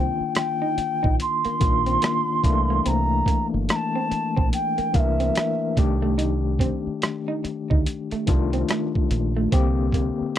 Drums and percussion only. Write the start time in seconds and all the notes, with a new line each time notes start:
0.35 cross-stick, closed hi-hat
0.78 closed hi-hat
1.04 kick
1.20 closed hi-hat
1.45 closed hi-hat
1.61 kick, closed hi-hat
1.86 closed hi-hat
2.02 cross-stick, closed hi-hat
2.44 kick, closed hi-hat
2.86 closed hi-hat
3.26 kick, closed hi-hat
3.69 cross-stick, closed hi-hat
4.12 closed hi-hat
4.37 kick
4.53 closed hi-hat
4.78 closed hi-hat
4.94 kick, closed hi-hat
5.20 closed hi-hat
5.35 cross-stick, closed hi-hat
5.77 kick, closed hi-hat
6.19 closed hi-hat
6.59 kick, closed hi-hat
7.02 cross-stick, closed hi-hat
7.45 closed hi-hat
7.71 kick
7.86 closed hi-hat
8.11 closed hi-hat
8.27 kick, closed hi-hat
8.53 closed hi-hat
8.69 cross-stick, closed hi-hat
8.95 kick
9.11 closed hi-hat
9.52 kick, closed hi-hat
9.93 kick, closed hi-hat